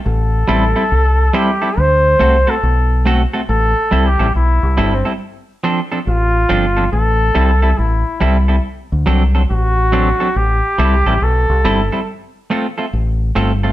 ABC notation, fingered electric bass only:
X:1
M:4/4
L:1/16
Q:"Swing 16ths" 1/4=70
K:Am
V:1 name="Fingered electric bass" clef=bass
A,,,2 A,,, z C,,2 z2 D,,2 C,, z B,,,3 z | A,,, z C,, A,,, B,,, C,, G,,, z4 z A,,,2 G,,,2 | A,,,2 C,,2 A,,, z C,,2 z D,, C,,2 A,,,3 z | A,,, z C,, A,,, B,,, C,, G,,, z4 z A,,,2 G,,,2 |]